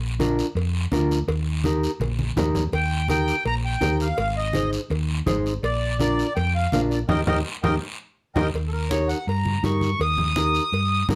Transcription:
Already playing: A#1
0.20 D4 F4 A#4, cowbell, high conga, short guiro
0.39 short guiro
0.55 F2, cowbell, high conga, long guiro
0.92 D2 D4 F4 A#4, cowbell, high conga, short guiro
1.11 short guiro
1.28 D#2, cowbell, high conga, long guiro
1.64 D#4 G4 A#4, cowbell, high conga, short guiro
1.83 short guiro
2.00 A#1, cowbell, high conga, long guiro
2.19 high conga
2.36 D#2 D#4 G4 A#4, cowbell, low conga, low timbale, short guiro
2.55 low conga, short guiro
2.72 D#2 G5, cowbell, high conga, long guiro
3.08 D#4 G4 A#4 G5, cowbell, high conga, short guiro
3.28 short guiro
3.45 A#1 A#5, cowbell, high conga, long guiro
3.65 G5
3.81 D#2 D#4 G4 A#4, cowbell, high conga, low timbale, short guiro
4.00 F5, short guiro
4.18 G#1 F5, cowbell, high conga, long guiro
4.37 D#5
4.53 D#4 G#4 C5, cowbell, high conga, short guiro
4.73 short guiro
4.90 D#2, cowbell, high conga, long guiro
5.26 G#1 D#4 G#4 C5, cowbell, high conga, low conga, short guiro
5.46 short guiro
5.63 A#1 D5, cowbell, high conga, long guiro
5.99 D4 F4 A#4 D5, cowbell, high conga, short guiro
6.19 short guiro
6.35 F2 G5, cowbell, high conga, long guiro
6.55 F5
6.72 A#1 D4 F4 A#4 F5, cowbell, high conga, low timbale, short guiro
6.90 D5, short guiro
7.09 D#2 D#4 G4 A#4 D#5 G5, low conga, high timbale, long guiro
7.27 D#2 D#4 G4 A#4 D#5 G5, low conga, high timbale, long guiro
7.63 D#2 D#4 G4 A#4 D#5 G5, low conga, high timbale, long guiro
8.35 D#2 D#4 G4 A#4 D#5 G5, low conga, high timbale, long guiro
8.54 D#2, cowbell, high conga, long guiro
8.68 A4
8.73 A#4, high conga
8.90 D#4 G4 A#4 C#5, cowbell, high conga, short guiro
9.08 F#5, short guiro
9.27 G2 A#5, cowbell, long guiro
9.45 high conga
9.63 G2 D#4 G4 A#4 C#6, cowbell, high conga, short guiro
9.81 high conga, short guiro
9.99 D#2 D#6, cowbell, high conga, long guiro
10.18 high conga, low conga
10.36 D#4 G4 A#4, cowbell, high conga, short guiro
10.55 short guiro
10.72 G2, cowbell, long guiro
11.09 G2 D#4 G4 A#4, cowbell, high conga, low conga, short guiro

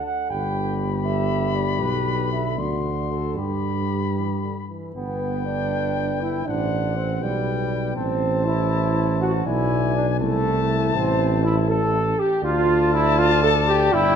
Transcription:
Already playing: D3
0.06 F#5
0.30 G1 G4 G5 B5
1.06 E5
1.55 D5
1.80 B1 D3 B4
2.32 E5
2.58 D2 F#4 D5 C6
3.11 A4
3.36 G2 G4 B5
4.16 E3
4.43 D3
4.69 E3
4.95 G1 B3 B4 G5
5.45 D4
6.22 E4
6.46 A1 D4 C5 F#5
6.96 C4
7.21 B1 G3 B4 G5
7.95 A1 C4 C5 A5
8.45 E4
9.20 F#4
9.46 B1 E4 D5 G#5
9.95 D4
10.20 C2 A3 E4 A5
10.95 A1 C4
11.44 E4
11.69 A4
12.19 G4
12.43 D2 F4 D5 A5
12.93 E4
13.18 F4
13.43 A4
13.68 G4
13.93 G1 E4 G5

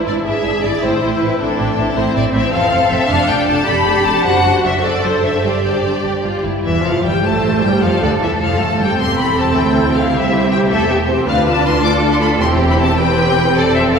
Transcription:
Already playing: E4
0.06 G#1 G#2 D4 E4 D5
0.24 G#1 G#2 D4 E4 G#4 E5
0.43 G#1 G#2 D4 E4
0.63 G#1 G#2 D4 E4 D5
0.81 A1 A2 C4 E4 C5
1.01 A1 A2 C4 E4
1.19 A1 A2 C4 E4 B4
1.38 A1 A2 C4 D4 E4 A4
1.57 A1 A2 C4 E4
1.77 A1 A2 C4 E4
1.95 A1 A2 C4 E4 C5
2.15 A1 A2 C4 E4 D5
2.34 A1 A2 C4 E4 E5
2.52 F1 F2 C4 A4 F5
2.72 F1 F2 C4 A4
2.91 F1 F2 C4 A4 E5
3.08 F1 F2 D4 A4 F5
3.28 F1 F2 D4 A4 G5
3.48 F1 F2 D4 A4 A5
3.67 F1 F2 D4 G4 A4 B5
3.86 F1 F2 D4 A4
4.05 F1 F2 D4 A4 A5
4.24 F#1 F#2 D4 F#4 C5 F#5
4.44 F#1 F#2 D4 C5
4.64 F#1 F#2 D4 C5 E5
4.83 F#1 F#2 D4 A4 C5 D5
5.03 F#1 F#2 D4 C5
5.23 F#1 F#2 D4 C5 E5
5.42 G1 G2 D4 G4 C5 D5
5.63 G1 G2 D4 C5
5.84 G1 G2 D4 C5
6.04 G1 G2 G4
6.24 G1 G2 F4
6.45 G1 G2 E4
6.64 E1 E2 E3 E5
6.84 F1 F2 F3 F5
7.03 G1 G2 G3 G5
7.24 A1 A2 A3 C5 A5
7.62 G1 G2 G3 G5
7.82 F1 F2 F3 A4 F5
8.01 D2 D3 D5
8.21 E1 E2 E3 E5
8.41 F1 F2 F3 F5
8.60 A1 A2 A3 A5
8.80 G1 G2 G3 G5
8.99 E1 E2 C4 G4 A4 C6
9.19 B5
9.38 A5
9.56 D2 E4 G5
9.95 F5
10.13 C2 C4 G4 E5
10.51 G5
10.69 E1 E2 A3 A4 E5
10.88 B3 G4
11.08 C4 C5
11.27 D2 D4 F4 B4 F5
11.46 A5
11.66 C6
11.83 A4 D6
12.13 C6
12.22 B5
12.40 E1 E2 C4 E4 G4 C6
12.70 B5
12.79 A5
12.98 C4 G4 B4 G5
13.55 F1 F2 C4 A4 D5
13.74 E5
13.94 F5

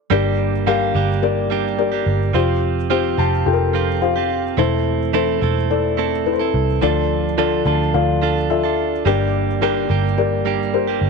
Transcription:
0.10 G1 G2 G3 A#3 D4 G4 A#4 D5
0.66 G2 D3 G3 A#3 D4 G4 A#4 F5
0.94 G1 G3 A#3 D4 G4
1.22 G4 A#4 D5
1.50 G3 A#3 D4 G4
1.78 G4 A#4 D5
1.92 G3 A#3 D4 G4
2.07 G1
2.33 F1 F3 C4 F4 G4 C5
2.90 F3 C4 F4 G4 C5
3.18 F1 F3 C4 F4 G4 A5
3.46 F1 F4 G4 A4 G5
3.53 A#4
3.73 F3 C4 F4 G4
4.01 F4 G4 C5 F5
4.16 C4 F4 G4
4.57 E1 E3 A3 C4 E4 A4 C5
5.13 E3 A3 C4 E4 A4 C5
5.41 E1 A3 C4 E4 A4
5.70 E4 A4 D5
5.97 A3 C4 E4 A4
6.26 E4 A4 B4
6.33 C5
6.39 C4 E4 A4
6.54 C2
6.81 D2 D3 F3 D4 F4 A4 D5
7.37 D3 F3 D4 F4 A4 D5
7.65 D2 F3 D4 F4 A4 A5
7.94 D2 F4 A4 D5 F5
8.22 F3 D4 F4 A4
8.50 F4 A4 D5 E5
8.63 D4 F4 A4
9.05 G1 G2 G3 A#3 D4 G4 A#4 D5
9.61 G2 D3 G3 A#3 D4 G4 A#4 D5
9.89 G1 G3 A#3 D4 G4
10.18 G4 A#4 D5
10.45 G3 A#3 D4 G4
10.73 G4 A#4 C5
10.87 G3 A#3 D4 G4
11.02 G1

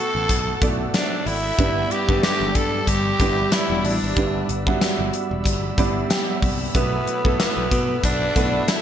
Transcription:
Already playing: B2 A3 B3 E4 F#4 A4 B4 F#5 A5 E6
0.15 A1
0.29 B1, kick, closed hi-hat
0.61 B1 A3 B3 E4 F#4 D5, kick, closed hi-hat
0.94 D4 D5, snare, closed hi-hat, tambourine
1.26 G#1 E4 E5, open hi-hat
1.58 G1 G2 G3 B3 D4 E4 B4 D5 B5 E6, kick, closed hi-hat
1.91 G3 E4 G4 B4 G5, closed hi-hat
2.08 G1 E3 G3 B3 D4 E4 A4 B4, kick
2.23 G4 G5, snare, closed hi-hat, tambourine
2.41 G1
2.55 G2 A4 A5, kick, closed hi-hat
2.87 G1 G4 G5, kick, closed hi-hat
3.19 G1 E3 G3 B3 D4 E4 G4 B4, kick, closed hi-hat
3.52 E4 E5, snare, closed hi-hat, tambourine
3.70 E1 B2 G3 E4
3.84 A1 D4 D5, open hi-hat
4.02 G#1
4.16 G1 G2 G3 B3 D4 E4 B4, kick, closed hi-hat
4.49 G1, closed hi-hat
4.66 G3 B3 D4 E4 F#4, kick
4.81 snare, closed hi-hat, tambourine
4.99 G1
5.13 closed hi-hat
5.31 E1
5.45 G1, kick, closed hi-hat
5.78 G1 G3 B3 D4 E4 D5 B5, kick, closed hi-hat
6.10 G5, snare, closed hi-hat, tambourine
6.28 E5
6.42 C2, kick, open hi-hat
6.74 B1 B2 A3 B3 E4 F#4 A4 B4 F#5, kick, closed hi-hat
7.07 F#3 E4 B4, closed hi-hat
7.24 B1 F#3 A3 B3 E4 F#4 A4 B4, kick
7.40 B3 B4, snare, closed hi-hat, tambourine
7.57 B1
7.71 B2, kick, closed hi-hat
8.03 B1 D4 D5, kick, closed hi-hat
8.36 B1 B2 A3 B3 E4 F#4 B4, kick, closed hi-hat
8.68 E4 E5, snare, closed hi-hat, tambourine

